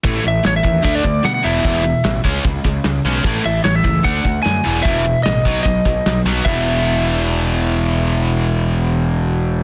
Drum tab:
CC |--------|--------|x-------|--------|
HH |o-o-o-o-|o-o-o-o-|--o-o-o-|o-o-o-o-|
SD |--o---o-|--o---o-|--o---o-|--o---oo|
BD |o--ooo--|o--ooo--|o--ooo--|o--ooo--|

CC |x-------|--------|
HH |--------|--------|
SD |--------|--------|
BD |o-------|--------|